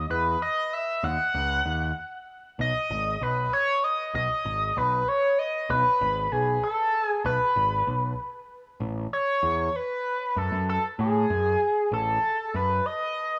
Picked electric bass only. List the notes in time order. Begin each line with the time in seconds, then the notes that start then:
0.10 E2
1.03 D#2
1.34 C#2
1.66 D#2
2.59 B1
2.90 G#1
3.21 B1
4.14 B1
4.45 G#1
4.77 B1
5.70 B1
6.01 G#1
6.32 B1
7.25 B1
7.56 G#1
7.87 B1
8.80 A1
9.43 E2
10.36 F#2
10.52 F#2
10.99 A2
11.30 F#2
11.92 A1
12.54 F#2